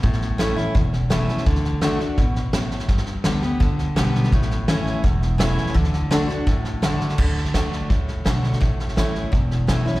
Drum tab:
CC |----------------|----------------|----------------|----------------|
HH |----p-------p---|----p-------p---|----p-------p---|----p-------p---|
SD |ooo-o-o-o-o-o-oo|ooo-o-o-o-o-o-oo|ooo-o-o-o-o-o-oo|ooo-o-o-o-o-o-oo|
BD |o-------o-------|o-------o-------|o-------o-------|o-------o-------|

CC |----------------|x---------------|----------------|
HH |----p-------p---|----p-------p---|----p-------p---|
SD |ooo-o-o-o-o-o-oo|o-ooo-o-o-o-o-oo|o-ooo-o-o-o-o-oo|
BD |o-------o-------|o---o---o---o---|o---o---o---o---|